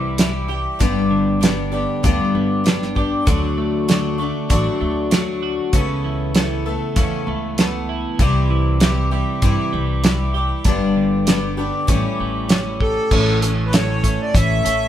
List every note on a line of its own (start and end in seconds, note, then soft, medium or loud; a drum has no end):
0.00 0.66 C2 medium
0.00 0.19 C3 medium
0.00 0.17 E3 medium
0.00 0.18 G3 medium
0.00 0.80 G3 medium
0.00 0.18 E4 medium
0.00 0.20 G4 medium
0.18 0.49 E3 medium
0.18 0.50 G3 medium
0.18 0.49 E4 medium
0.18 0.47 G4 medium
0.18 snare medium
0.18 closed hi-hat medium
0.48 0.79 G3 soft
0.48 0.80 E4 soft
0.48 0.80 G4 soft
0.79 1.84 G1 medium
0.79 1.42 G2 medium
0.79 1.42 D3 medium
0.79 1.39 G3 medium
0.79 1.41 B3 medium
0.79 1.42 D4 medium
0.79 1.43 G4 medium
0.79 kick medium
0.79 closed hi-hat medium
1.11 2.65 D3 medium
1.41 1.72 G3 medium
1.41 1.72 B3 medium
1.41 1.71 D4 medium
1.41 1.70 G4 medium
1.41 snare medium
1.41 closed hi-hat medium
1.72 2.03 G3 soft
1.72 2.03 B3 soft
1.72 2.04 D4 medium
1.72 2.03 G4 medium
2.03 2.17 D2 medium
2.03 2.65 G2 medium
2.03 2.65 D3 medium
2.03 2.63 G3 medium
2.03 2.64 B3 medium
2.03 2.66 D4 medium
2.03 2.66 G4 medium
2.03 kick medium
2.03 closed hi-hat medium
2.35 3.12 G1 medium
2.35 3.27 B3 medium
2.64 2.96 G3 medium
2.64 2.96 B3 medium
2.64 2.96 D4 medium
2.64 2.94 G4 medium
2.64 snare medium
2.64 closed hi-hat soft
2.82 snare soft
2.95 3.26 G3 soft
2.95 3.27 B3 soft
2.95 3.26 D4 soft
2.95 3.27 G4 soft
2.95 kick medium
3.26 4.30 D2 medium
3.26 3.88 D3 medium
3.26 3.87 F#3 medium
3.26 3.89 A3 medium
3.26 3.89 D4 medium
3.26 3.89 F#4 medium
3.26 kick medium
3.26 closed hi-hat medium
3.58 4.18 A3 medium
3.88 4.48 D3 medium
3.88 4.19 F#3 medium
3.88 4.20 A3 medium
3.88 4.19 D4 medium
3.88 4.17 F#4 medium
3.88 snare medium
3.88 closed hi-hat medium
4.18 4.50 A3 soft
4.18 4.50 D4 medium
4.18 4.50 F#4 medium
4.49 4.63 A1 medium
4.49 5.12 D3 medium
4.49 5.10 F#3 medium
4.49 5.11 A3 medium
4.49 5.12 D4 medium
4.49 5.13 F#4 medium
4.49 kick medium
4.49 closed hi-hat medium
4.81 5.58 D2 medium
4.81 5.73 A3 medium
5.11 5.73 F#3 medium
5.11 5.73 A3 medium
5.11 5.74 D4 medium
5.11 5.75 F#4 medium
5.11 snare medium
5.11 closed hi-hat medium
5.43 5.73 F#4 medium
5.73 6.76 C#2 medium
5.73 6.35 C#3 medium
5.73 6.34 E3 medium
5.73 6.34 A3 medium
5.73 6.36 B3 medium
5.73 6.36 A4 medium
5.73 kick medium
5.73 closed hi-hat medium
6.04 6.34 E3 medium
6.35 6.66 E3 medium
6.35 6.66 A3 medium
6.35 6.66 B3 medium
6.35 6.65 A4 medium
6.35 snare loud
6.35 closed hi-hat medium
6.66 6.96 A3 soft
6.66 6.96 B3 medium
6.66 6.97 A4 medium
6.96 7.09 E2 medium
6.96 7.58 C#3 medium
6.96 7.57 E3 medium
6.96 7.58 A3 medium
6.96 7.59 B3 medium
6.96 7.59 A4 medium
6.96 kick medium
6.96 closed hi-hat medium
7.27 8.04 C#2 medium
7.27 8.20 A3 medium
7.58 8.19 E3 medium
7.58 8.20 A3 medium
7.58 8.21 B3 medium
7.58 8.21 A4 medium
7.58 snare medium
7.58 closed hi-hat medium
7.89 8.20 E4 medium
8.19 9.22 C2 medium
8.19 8.81 C3 medium
8.19 8.80 E3 medium
8.19 8.81 G3 medium
8.19 8.82 E4 medium
8.19 8.84 G4 medium
8.19 kick medium
8.19 closed hi-hat soft
8.50 8.79 E3 medium
8.80 9.12 E3 medium
8.80 9.12 G3 medium
8.80 9.11 E4 medium
8.80 9.10 G4 medium
8.80 snare loud
8.80 closed hi-hat medium
9.11 9.41 G3 soft
9.11 9.43 E4 medium
9.11 9.42 G4 medium
9.42 9.55 G2 medium
9.42 10.04 C3 medium
9.42 10.03 E3 medium
9.42 10.04 G3 medium
9.42 10.04 E4 medium
9.42 10.05 G4 medium
9.42 kick medium
9.42 closed hi-hat soft
9.73 10.51 C2 medium
9.73 10.65 G3 medium
10.04 10.35 E3 medium
10.04 10.35 G3 medium
10.04 10.35 E4 medium
10.04 10.33 G4 medium
10.04 snare loud
10.04 closed hi-hat medium
10.34 10.65 G3 soft
10.34 10.66 E4 soft
10.34 10.65 G4 soft
10.65 11.68 G1 medium
10.65 11.27 G2 medium
10.65 11.27 D3 medium
10.65 11.25 G3 medium
10.65 11.26 B3 medium
10.65 11.27 D4 medium
10.65 11.28 G4 medium
10.65 kick loud
10.65 closed hi-hat medium
10.96 11.88 D3 medium
11.26 11.58 G3 medium
11.26 11.58 B3 medium
11.26 11.57 D4 medium
11.26 11.56 G4 medium
11.26 snare loud
11.26 closed hi-hat medium
11.57 11.87 G3 soft
11.57 11.88 B3 soft
11.57 11.88 D4 medium
11.57 11.88 G4 medium
11.87 12.01 A1 medium
11.87 12.49 A2 medium
11.87 12.47 E3 medium
11.87 12.49 G3 medium
11.87 12.49 C#4 medium
11.87 12.50 G4 medium
11.87 kick medium
11.87 closed hi-hat medium
12.20 12.97 A1 medium
12.20 13.12 G3 medium
12.49 13.10 E3 medium
12.49 13.12 G3 medium
12.49 13.11 C#4 medium
12.49 13.12 G4 medium
12.49 snare loud
12.49 closed hi-hat medium
12.80 13.12 G4 medium
12.80 13.39 A4 loud
12.80 kick medium
13.11 14.14 A1 medium
13.11 13.42 A2 medium
13.11 13.42 E3 medium
13.11 13.43 A3 medium
13.11 13.42 C#4 medium
13.11 13.41 A4 medium
13.11 kick medium
13.11 crash medium
13.42 13.73 A3 soft
13.42 13.73 C#4 soft
13.42 13.73 A4 soft
13.42 closed hi-hat medium
13.66 13.73 B4 medium
13.73 14.04 A2 medium
13.73 14.04 E3 medium
13.73 14.04 A3 medium
13.73 14.03 C#4 medium
13.73 14.02 A4 medium
13.73 14.22 C#5 medium
13.73 snare loud
13.73 closed hi-hat medium
14.03 14.34 A3 soft
14.03 14.35 C#4 soft
14.03 14.34 A4 medium
14.03 kick medium
14.03 closed hi-hat medium
14.22 14.35 D5 medium
14.34 14.60 A1 medium
14.34 14.65 E3 medium
14.34 14.66 A3 medium
14.34 14.65 C#4 medium
14.34 14.63 A4 medium
14.34 14.88 E5 loud
14.34 kick loud
14.34 closed hi-hat medium
14.65 14.88 A1 medium
14.65 14.88 A3 soft
14.65 14.88 C#4 soft
14.65 14.88 A4 soft
14.65 closed hi-hat medium